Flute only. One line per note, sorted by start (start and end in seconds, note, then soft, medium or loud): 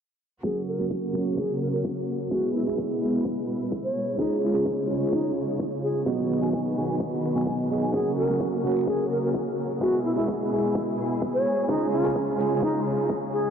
0.44 0.62 G#4 medium
0.67 0.86 A#4 medium
1.38 1.56 G#4 medium
1.61 1.69 A#4 medium
1.73 1.80 A#4 medium
2.31 2.50 F#4 medium
2.55 2.62 E4 medium
2.67 2.74 E4 medium
3.84 4.18 C#5 medium
4.19 4.37 D#4 medium
4.42 4.61 F4 medium
5.13 5.31 D#4 medium
5.83 6.01 G#4 medium
6.41 6.49 G#5 medium
6.53 6.61 G#5 medium
6.77 6.84 G#5 medium
6.89 6.96 G#5 medium
7.35 7.43 G#5 medium
7.47 7.55 G#5 medium
7.82 7.93 G#5 medium
7.94 8.12 G#4 medium
8.17 8.36 A#4 medium
8.87 9.06 G#4 medium
9.11 9.19 A#4 medium
9.23 9.30 A#4 medium
9.81 10.00 F#4 medium
10.05 10.12 E4 medium
10.17 10.24 E4 medium
11.34 11.68 C#5 medium
11.69 11.87 D#4 medium
11.92 12.11 F4 medium
12.63 12.81 D#4 medium
13.33 13.50 G#4 medium